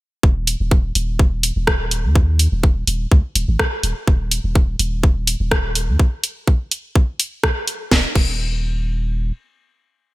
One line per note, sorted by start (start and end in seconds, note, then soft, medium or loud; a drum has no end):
0.23 0.56 D#1 loud
0.23 kick loud
0.47 open hi-hat medium
0.60 0.92 D#1 medium
0.71 kick loud
0.95 1.52 D#1 loud
0.95 open hi-hat medium
1.19 kick loud
1.43 open hi-hat medium
1.56 2.06 D#1 medium
1.67 kick loud
1.67 cross-stick loud
1.91 open hi-hat loud
2.04 2.48 D#2 medium
2.15 kick loud
2.39 open hi-hat medium
2.52 2.83 D#1 medium
2.63 kick loud
2.87 3.06 D#1 medium
2.87 open hi-hat loud
3.12 3.21 C#2 loud
3.12 kick loud
3.35 3.45 D#1 medium
3.35 open hi-hat medium
3.48 3.57 G#1 medium
3.59 kick loud
3.59 cross-stick loud
3.83 3.93 D#1 medium
3.83 open hi-hat medium
4.08 4.40 D#1 loud
4.08 kick loud
4.31 open hi-hat medium
4.44 4.75 D#1 medium
4.55 kick loud
4.79 5.36 D#1 loud
4.79 open hi-hat loud
5.03 kick loud
5.27 open hi-hat loud
5.40 5.90 D#1 medium
5.51 kick loud
5.51 cross-stick loud
5.75 open hi-hat loud
5.88 5.97 D#2 medium
5.99 kick loud
6.24 open hi-hat medium
6.47 kick loud
6.71 open hi-hat loud
6.95 kick loud
7.20 open hi-hat medium
7.43 kick loud
7.43 cross-stick loud
7.68 open hi-hat loud
7.91 8.05 D#1 loud
7.91 kick loud
7.91 snare medium
8.15 9.31 D#1 medium
8.15 kick loud
8.15 crash medium